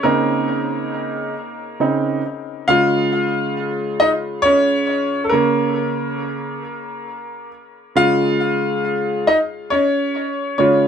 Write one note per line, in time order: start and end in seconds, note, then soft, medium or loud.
0.03 1.32 C#3 medium
0.03 2.21 A#3 medium
0.03 1.32 C4 soft
0.03 1.33 D#4 medium
0.03 2.21 A#4 medium
1.80 2.20 C#3 soft
1.80 2.21 C4 soft
1.80 2.21 D#4 medium
2.68 5.29 C#3 medium
2.68 5.30 G#3 soft
2.68 5.30 F4 medium
2.68 3.53 F5 loud
4.00 4.12 D#4 medium
4.00 4.10 D#5 loud
4.42 5.23 C#4 medium
4.42 5.21 C#5 loud
5.24 5.32 A4 medium
5.29 6.61 C#3 medium
5.29 7.49 A#3 medium
5.29 6.61 C#4 medium
5.29 7.47 A#4 medium
7.95 9.23 C#3 medium
7.95 9.23 G#3 soft
7.95 9.24 F4 medium
7.95 9.31 F5 loud
9.27 9.38 D#4 medium
9.27 9.37 D#5 medium
9.70 10.55 C#4 medium
9.70 10.57 C#5 medium
10.58 10.88 C#3 medium
10.58 10.88 G#3 soft
10.58 10.88 C#4 medium
10.58 10.88 F4 medium
10.58 10.88 C#5 medium